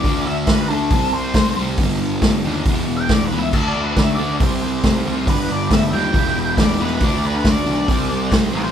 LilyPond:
<<
  \new Staff \with { instrumentName = "Lead electric guitar" } { \time 4/4 \key d \mixolydian \tempo 4 = 138 d''8 e''8 b'8 a'4 c''4 r8 | r2 \tuplet 3/2 { r4 g''8 d''8 b'8 e''8 } | \tuplet 3/2 { a''8 d''8 b'8 e''8 d''8. r16 } r2 | b'8 d''8 e''8 g''4. d''8 b'8 |
d''8 b'8 d''2 r8 <c'' a''>8 | }
  \new Staff \with { instrumentName = "Transistor combo organ" } { \time 4/4 \key d \mixolydian r1 | r1 | <d' fis' a'>2 <e' g' c''>2 | <d' g' b'>2 <e' g' b'>2 |
<d' fis' a'>2 <e' g' c''>2 | }
  \new Staff \with { instrumentName = "Distorted electric guitar" } { \clef bass \time 4/4 \key d \mixolydian <d a d'>4. <d a d'>8 <c g c'>4. <c g c'>8 | <g, d g>4. <g, d g>8 <e, b, e>4. <e, b, e>8 | <d a d'>4. <d a d'>8 <c g c'>4. <c g c'>8 | <g, d g>4. <g, d g>8 <e, b, e>4. <e, b, e>8 |
<d a d'>4. <d a d'>8 <c g c'>4. <c g c'>8 | }
  \new Staff \with { instrumentName = "Picked electric bass" } { \clef bass \time 4/4 \key d \mixolydian d,8 d,8 d,8 d,8 c,8 c,8 c,8 c,8 | g,,8 g,,8 g,,8 dis,8 e,,8 e,,8 e,,8 cis,8 | d,8 d,8 d,8 d,8 c,8 c,8 c,8 c,8 | g,,8 g,,8 g,,8 dis,8 e,,8 e,,8 e,,8 e,,8 |
d,8 d,8 d,8 b,,8 c,8 c,8 c,8 a,,8 | }
  \new DrumStaff \with { instrumentName = "Drums" } \drummode { \time 4/4 <hho bd>4 <hho bd sn>4 <hho bd>4 <hho bd sn>4 | <hho bd>4 <hho bd sn>4 <hho bd>4 <hho bd sn>4 | <cymc bd>4 <hho bd sn>4 <hho bd>4 <hho bd sn>4 | <hho bd>4 <hho bd sn>4 <hho bd>4 <hho bd sn>4 |
<hho bd>4 <hho bd sn>4 <hho bd>4 <hho bd sn>4 | }
>>